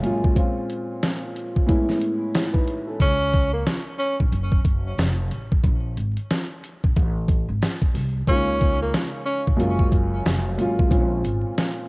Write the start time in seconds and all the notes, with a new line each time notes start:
Already playing: F#2 G#3 A#3 C#4 F4
0.03 A1 F#2 G#3 A#3 C#4 F4, closed hi-hat
0.24 kick
0.35 A#2 G#3 C4 C#4 F4, kick, closed hi-hat
0.70 closed hi-hat
1.03 snare, closed hi-hat
1.36 closed hi-hat
1.56 kick
1.66 A2 G#3 B3 C#4 E4, kick, closed hi-hat
1.89 snare
2.01 closed hi-hat
2.35 E4 C#5, snare, closed hi-hat
2.53 D#4 B4, kick
2.68 closed hi-hat
2.87 C#4 A4
3.00 C#2 C#4, kick, closed hi-hat
3.33 kick, closed hi-hat
3.53 A#3
3.67 snare, closed hi-hat
3.98 C#4, closed hi-hat
4.20 A#1, kick
4.32 F#1, closed hi-hat
4.52 kick
4.65 F#1, kick, closed hi-hat
4.98 F1, snare, closed hi-hat
5.31 A1, closed hi-hat
5.52 kick
5.64 A#1, kick, closed hi-hat
5.97 G#1, closed hi-hat
6.17 closed hi-hat
6.30 snare, closed hi-hat
6.64 closed hi-hat
6.84 A#1, kick
6.96 A1, kick, closed hi-hat
7.28 kick, closed hi-hat
7.49 G#1
7.62 snare, closed hi-hat
7.82 kick, closed hi-hat
7.94 C2, open hi-hat
8.27 C#2 C#3 G#3 A#3 C#4 D#4 F4, kick, closed hi-hat
8.61 kick, closed hi-hat
8.82 A#3
8.94 snare, closed hi-hat
9.25 C#4, closed hi-hat
9.47 A#1, kick
9.57 F#1 F#2 G#3 A#3 C#4 F4, closed hi-hat
9.79 kick
9.92 F#1, kick, closed hi-hat
10.25 F1, snare, closed hi-hat
10.58 A1 F#2 G#3 A#3 C#4 F4, closed hi-hat
10.79 kick
10.89 A#1 A#2 G#3 C4 C#4 F4, kick, closed hi-hat
11.24 G#1, closed hi-hat
11.58 snare, closed hi-hat